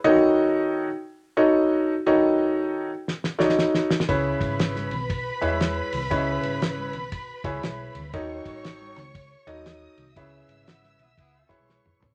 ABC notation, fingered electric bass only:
X:1
M:4/4
L:1/16
Q:"Swing" 1/4=118
K:C#m
V:1 name="Fingered electric bass" clef=bass
z16 | z16 | C,,2 G,,,4 B,,,4 E,,4 ^B,,,2 | C,,2 G,,,4 B,,,4 C,,2 B,,,2 =D,,2 |
D,,2 A,,,4 C,,4 D,,4 ^B,,,2 | C,,2 G,,,4 B,,,2 C,,2 z B,,,2 A,,, ^B,,,2 |]